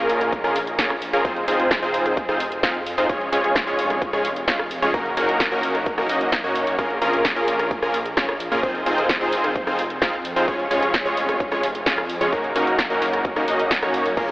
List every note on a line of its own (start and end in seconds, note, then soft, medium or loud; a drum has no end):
0.00 0.42 A#1 loud
0.00 0.41 A#3 loud
0.00 0.41 C#4 medium
0.00 0.41 F4 medium
0.00 0.41 G#4 medium
0.00 0.41 A#4 loud
0.10 open hi-hat loud
0.21 cross-stick medium
0.21 closed hi-hat medium
0.32 kick loud
0.32 closed hi-hat medium
0.44 0.76 A#1 loud
0.44 0.59 A#3 medium
0.44 0.59 C#4 medium
0.44 0.59 F4 medium
0.44 0.59 G#4 medium
0.44 0.59 A#4 loud
0.44 cross-stick medium
0.44 closed hi-hat soft
0.56 open hi-hat loud
0.67 closed hi-hat medium
0.79 1.11 A#1 medium
0.79 0.93 A#3 medium
0.79 0.93 C#4 medium
0.79 0.93 F4 medium
0.79 0.93 G#4 medium
0.79 0.93 C#5 loud
0.79 kick loud
0.79 snare loud
0.79 closed hi-hat medium
0.90 cross-stick medium
0.90 closed hi-hat soft
1.02 open hi-hat loud
1.13 1.22 A#1 loud
1.13 1.23 A#3 medium
1.13 1.23 C#4 medium
1.13 1.23 F4 medium
1.13 1.23 G#4 medium
1.13 1.23 A#4 medium
1.13 closed hi-hat medium
1.25 1.46 F1 medium
1.25 1.45 C4 medium
1.25 1.45 D#4 medium
1.25 1.45 F4 medium
1.25 1.45 G#4 medium
1.25 1.45 C5 loud
1.25 kick loud
1.25 closed hi-hat medium
1.36 closed hi-hat soft
1.48 1.80 F1 loud
1.48 1.80 C4 loud
1.48 1.80 D#4 medium
1.48 1.80 F4 medium
1.48 1.80 G#4 medium
1.48 1.80 C5 loud
1.48 open hi-hat loud
1.60 closed hi-hat medium
1.71 kick loud
1.71 snare loud
1.71 closed hi-hat medium
1.82 2.26 F1 medium
1.82 2.26 C4 loud
1.82 2.26 D#4 medium
1.82 2.26 F4 medium
1.82 2.26 G#4 medium
1.82 2.26 C5 loud
1.82 closed hi-hat soft
1.94 open hi-hat loud
2.06 cross-stick medium
2.06 closed hi-hat medium
2.17 kick loud
2.17 closed hi-hat medium
2.29 2.61 F1 loud
2.29 2.43 C4 loud
2.29 2.43 D#4 medium
2.29 2.43 F4 medium
2.29 2.43 G#4 medium
2.29 2.43 C5 loud
2.29 cross-stick medium
2.29 closed hi-hat soft
2.40 open hi-hat loud
2.52 closed hi-hat medium
2.63 2.96 F2 loud
2.63 2.78 C4 medium
2.63 2.78 D#4 medium
2.63 2.78 F4 medium
2.63 2.78 G#4 medium
2.63 2.78 F5 loud
2.63 kick loud
2.63 snare loud
2.63 closed hi-hat medium
2.75 closed hi-hat soft
2.86 open hi-hat loud
2.98 3.07 F2 loud
2.98 3.08 C4 medium
2.98 3.08 D#4 medium
2.98 3.08 F4 medium
2.98 3.08 G#4 medium
2.98 3.08 C5 medium
2.98 open hi-hat medium
3.09 3.30 F1 medium
3.09 3.30 G#3 medium
3.09 3.30 C#4 medium
3.09 3.30 F4 medium
3.09 3.30 G#4 medium
3.09 3.30 C#5 loud
3.09 kick loud
3.09 closed hi-hat medium
3.21 closed hi-hat soft
3.32 3.65 F1 loud
3.32 3.64 G#3 loud
3.32 3.64 C#4 medium
3.32 3.64 F4 medium
3.32 3.64 G#4 medium
3.32 3.64 C#5 loud
3.32 open hi-hat loud
3.44 closed hi-hat medium
3.56 kick loud
3.56 snare loud
3.56 closed hi-hat medium
3.67 4.11 F1 loud
3.67 4.10 G#3 loud
3.67 4.10 C#4 medium
3.67 4.11 F4 medium
3.67 4.11 G#4 medium
3.67 4.10 C#5 loud
3.67 closed hi-hat soft
3.79 open hi-hat loud
3.90 cross-stick medium
3.90 closed hi-hat medium
4.02 kick loud
4.02 closed hi-hat medium
4.13 4.46 F1 loud
4.13 4.28 G#3 loud
4.13 4.28 C#4 medium
4.13 4.28 F4 medium
4.13 4.28 G#4 medium
4.13 4.28 C#5 loud
4.13 cross-stick medium
4.13 closed hi-hat soft
4.25 open hi-hat loud
4.36 closed hi-hat medium
4.48 4.80 F1 loud
4.48 4.62 G#3 medium
4.48 4.62 C#4 medium
4.48 4.62 F4 medium
4.48 4.62 G#4 medium
4.48 4.62 F5 loud
4.48 kick loud
4.48 snare loud
4.48 closed hi-hat medium
4.59 cross-stick medium
4.59 closed hi-hat soft
4.71 open hi-hat loud
4.82 4.92 F1 loud
4.82 4.92 G#3 medium
4.82 4.92 C#4 medium
4.82 4.92 F4 medium
4.82 4.92 G#4 medium
4.82 4.92 C#5 medium
4.82 closed hi-hat medium
4.94 5.15 F#1 loud
4.94 5.14 A#3 medium
4.94 5.14 C#4 medium
4.94 5.14 D#4 medium
4.94 5.14 F#4 medium
4.94 5.14 A#4 loud
4.94 kick loud
4.94 closed hi-hat medium
5.06 closed hi-hat soft
5.17 5.49 F#1 loud
5.17 5.49 A#3 loud
5.17 5.49 C#4 medium
5.17 5.49 D#4 medium
5.17 5.49 F#4 medium
5.17 5.49 A#4 loud
5.17 open hi-hat loud
5.29 closed hi-hat medium
5.40 kick loud
5.40 snare loud
5.40 closed hi-hat medium
5.52 5.96 F#1 loud
5.52 5.95 A#3 loud
5.52 5.95 C#4 medium
5.52 5.95 D#4 medium
5.52 5.95 F#4 medium
5.52 5.95 A#4 loud
5.52 closed hi-hat soft
5.63 open hi-hat loud
5.75 cross-stick medium
5.75 closed hi-hat soft
5.86 kick loud
5.86 closed hi-hat medium
5.98 6.07 F#1 loud
5.98 6.07 A#3 loud
5.98 6.07 C#4 medium
5.98 6.07 D#4 medium
5.98 6.07 F#4 medium
5.98 6.07 A#4 loud
5.98 cross-stick medium
5.98 closed hi-hat soft
6.09 6.42 F#1 medium
6.09 6.41 A#3 medium
6.09 6.41 C#4 medium
6.09 6.41 D#4 medium
6.09 6.41 F#4 medium
6.09 6.41 D#5 medium
6.09 open hi-hat loud
6.21 closed hi-hat medium
6.32 kick loud
6.32 snare loud
6.32 closed hi-hat soft
6.44 6.76 F#2 loud
6.44 6.76 A#3 medium
6.44 6.76 C#4 medium
6.44 6.76 D#4 medium
6.44 6.76 F#4 medium
6.44 6.76 C#5 medium
6.44 closed hi-hat soft
6.55 open hi-hat loud
6.67 open hi-hat medium
6.79 6.99 A#1 medium
6.79 6.99 A#3 medium
6.79 6.99 C#4 medium
6.79 6.99 F4 medium
6.79 6.99 G#4 medium
6.79 6.99 A#4 loud
6.79 kick loud
6.79 closed hi-hat medium
6.90 closed hi-hat soft
7.02 7.34 A#1 loud
7.02 7.34 A#3 loud
7.02 7.34 C#4 medium
7.02 7.34 F4 medium
7.02 7.34 G#4 medium
7.02 7.34 A#4 loud
7.02 open hi-hat loud
7.13 closed hi-hat medium
7.25 kick loud
7.25 snare loud
7.25 closed hi-hat medium
7.36 7.80 A#1 loud
7.36 7.80 A#3 loud
7.36 7.80 C#4 medium
7.36 7.80 F4 medium
7.36 7.80 G#4 medium
7.36 7.80 A#4 loud
7.36 closed hi-hat soft
7.48 open hi-hat loud
7.59 cross-stick medium
7.59 closed hi-hat medium
7.71 kick loud
7.71 closed hi-hat soft
7.82 8.15 A#1 loud
7.82 7.97 A#3 medium
7.82 7.97 C#4 medium
7.82 7.97 F4 medium
7.82 7.97 G#4 medium
7.82 7.97 A#4 loud
7.82 cross-stick medium
7.82 closed hi-hat soft
7.94 open hi-hat loud
8.06 closed hi-hat medium
8.17 8.49 A#1 medium
8.17 8.32 A#3 loud
8.17 8.32 C#4 medium
8.17 8.32 F4 medium
8.17 8.32 G#4 medium
8.17 8.32 C#5 loud
8.17 kick loud
8.17 snare loud
8.17 closed hi-hat medium
8.29 cross-stick medium
8.29 closed hi-hat soft
8.40 open hi-hat loud
8.52 8.61 A#1 loud
8.52 8.61 A#3 medium
8.52 8.62 C#4 medium
8.52 8.62 F4 medium
8.52 8.62 G#4 medium
8.52 8.62 A#4 medium
8.52 closed hi-hat soft
8.63 8.84 F1 loud
8.63 8.84 C4 medium
8.63 8.84 D#4 medium
8.63 8.84 F4 medium
8.63 8.84 G#4 medium
8.63 8.84 C5 loud
8.63 kick loud
8.63 closed hi-hat medium
8.75 closed hi-hat soft
8.86 9.19 F1 loud
8.86 9.18 C4 loud
8.86 9.18 D#4 medium
8.86 9.18 F4 medium
8.86 9.18 G#4 medium
8.86 9.18 C5 loud
8.86 open hi-hat loud
8.98 closed hi-hat medium
9.09 kick loud
9.09 snare loud
9.09 closed hi-hat medium
9.21 9.65 F1 loud
9.21 9.64 C4 loud
9.21 9.64 D#4 medium
9.21 9.64 F4 medium
9.21 9.64 G#4 medium
9.21 9.64 C5 loud
9.21 closed hi-hat soft
9.33 open hi-hat loud
9.44 cross-stick medium
9.44 closed hi-hat medium
9.56 kick loud
9.56 closed hi-hat medium
9.67 9.99 F1 loud
9.67 9.82 C4 loud
9.67 9.82 D#4 medium
9.67 9.82 F4 medium
9.67 9.82 G#4 medium
9.67 9.82 C5 loud
9.67 cross-stick medium
9.67 closed hi-hat soft
9.79 open hi-hat loud
9.90 closed hi-hat medium
10.02 10.34 F2 loud
10.02 10.16 C4 medium
10.02 10.16 D#4 medium
10.02 10.16 F4 medium
10.02 10.16 G#4 medium
10.02 10.16 F5 loud
10.02 kick loud
10.02 snare loud
10.02 closed hi-hat medium
10.13 closed hi-hat soft
10.25 open hi-hat loud
10.36 10.46 F2 loud
10.36 10.46 C4 medium
10.36 10.46 D#4 medium
10.36 10.46 F4 medium
10.36 10.46 G#4 medium
10.36 10.46 C5 medium
10.36 open hi-hat medium
10.48 10.69 F1 loud
10.48 10.68 G#3 medium
10.48 10.68 C#4 medium
10.48 10.68 F4 medium
10.48 10.68 G#4 medium
10.48 10.68 C#5 loud
10.48 kick loud
10.48 closed hi-hat medium
10.60 closed hi-hat soft
10.71 11.03 F1 loud
10.71 11.03 G#3 loud
10.71 11.03 C#4 medium
10.71 11.03 F4 medium
10.71 11.03 G#4 medium
10.71 11.03 C#5 loud
10.71 open hi-hat loud
10.83 closed hi-hat medium
10.94 kick loud
10.94 snare loud
10.94 closed hi-hat medium
11.05 11.49 F1 loud
11.05 11.49 G#3 loud
11.05 11.49 C#4 medium
11.05 11.49 F4 medium
11.05 11.49 G#4 medium
11.05 11.49 C#5 loud
11.05 closed hi-hat soft
11.17 open hi-hat loud
11.29 cross-stick medium
11.29 closed hi-hat medium
11.40 kick loud
11.40 closed hi-hat medium
11.52 11.84 F1 loud
11.52 11.66 G#3 loud
11.52 11.66 C#4 medium
11.52 11.66 F4 medium
11.52 11.66 G#4 medium
11.52 11.66 C#5 loud
11.52 cross-stick medium
11.52 closed hi-hat soft
11.63 open hi-hat loud
11.75 closed hi-hat medium
11.86 12.19 F2 loud
11.86 12.01 G#3 medium
11.86 12.01 C#4 medium
11.86 12.01 F4 medium
11.86 12.01 G#4 medium
11.86 12.01 F5 loud
11.86 kick loud
11.86 snare loud
11.86 closed hi-hat medium
11.98 cross-stick medium
11.98 closed hi-hat soft
12.09 open hi-hat loud
12.21 12.30 F2 medium
12.21 12.31 G#3 medium
12.21 12.31 C#4 medium
12.21 12.31 F4 medium
12.21 12.31 G#4 medium
12.21 12.31 C#5 medium
12.21 closed hi-hat medium
12.33 12.53 F#1 medium
12.33 12.53 A#3 medium
12.33 12.53 C#4 medium
12.33 12.53 D#4 medium
12.33 12.53 F#4 medium
12.33 12.53 A#4 loud
12.33 kick loud
12.33 closed hi-hat medium
12.44 closed hi-hat soft
12.56 12.88 F#1 loud
12.56 12.87 A#3 loud
12.56 12.87 C#4 medium
12.56 12.87 D#4 medium
12.56 12.87 F#4 medium
12.56 12.87 A#4 loud
12.56 open hi-hat loud
12.67 closed hi-hat medium
12.79 kick loud
12.79 snare loud
12.79 closed hi-hat medium
12.90 13.34 F#1 loud
12.90 13.34 A#3 loud
12.90 13.34 C#4 medium
12.90 13.34 D#4 medium
12.90 13.34 F#4 medium
12.90 13.34 A#4 loud
12.90 closed hi-hat soft
13.02 snare soft
13.02 open hi-hat loud
13.13 cross-stick medium
13.13 closed hi-hat medium
13.25 kick loud
13.25 closed hi-hat medium
13.36 13.46 F#1 loud
13.36 13.46 A#3 loud
13.36 13.46 C#4 medium
13.36 13.46 D#4 medium
13.36 13.46 F#4 medium
13.36 13.46 A#4 loud
13.36 cross-stick medium
13.36 closed hi-hat soft
13.48 13.80 F#1 loud
13.48 13.80 A#3 medium
13.48 13.80 C#4 medium
13.48 13.80 D#4 medium
13.48 13.80 F#4 medium
13.48 13.80 D#5 medium
13.48 open hi-hat loud
13.59 closed hi-hat medium
13.71 kick loud
13.71 snare loud
13.71 closed hi-hat medium
13.82 14.15 F#2 loud
13.82 14.14 A#3 medium
13.82 14.14 C#4 medium
13.82 14.14 D#4 medium
13.82 14.14 F#4 medium
13.82 14.14 C#5 loud
13.82 cross-stick medium
13.82 closed hi-hat soft
13.94 open hi-hat loud
14.06 open hi-hat medium
14.17 14.31 A#1 medium
14.17 14.31 A#3 medium
14.17 14.31 C#4 medium
14.17 14.31 F4 medium
14.17 14.31 G#4 medium
14.17 14.31 A#4 medium
14.17 kick loud
14.17 closed hi-hat medium
14.17 crash medium